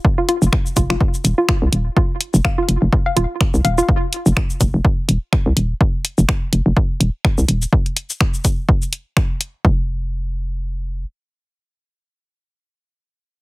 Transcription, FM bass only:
X:1
M:4/4
L:1/16
Q:"Swing 16ths" 1/4=125
K:Cphr
V:1 name="FM bass" clef=bass
z3 F,,, z2 F,,, F,,, z2 E,,, z2 C,, E,,, z | z3 F,,, z2 F,,, F,,, z2 E,,, z2 C,, E,,, z | z3 F,,, z2 F,,, F,,, z2 E,,, z2 C,, E,,, z | z3 F,,, z2 F,,, F,,, z2 E,,, z2 C,, E,,, z |
z16 | F,,,12 z4 | z16 |]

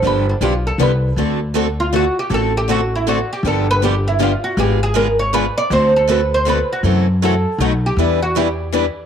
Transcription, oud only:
X:1
M:3/4
L:1/16
Q:"Swing" 1/4=159
K:Dmix
V:1 name="Oud"
B2 D2 =F2 A2 B3 z | z6 =F2 ^F2 G2 | A2 G2 F2 E2 F2 G2 | A2 B2 G2 E2 =F2 ^F2 |
G2 ^G2 _B2 ^c2 =B2 d2 | c2 A2 B2 c2 B2 F2 | z4 A6 G2- | G2 F2 G4 z4 |]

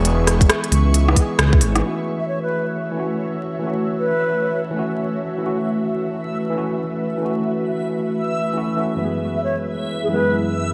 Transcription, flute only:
X:1
M:4/4
L:1/16
Q:"Swing 16ths" 1/4=134
K:F#m
V:1 name="Flute"
z16 | z3 e c B2 z8 z | z3 B6 z6 z | z16 |
z16 | z3 e c z4 G B2 z4 |]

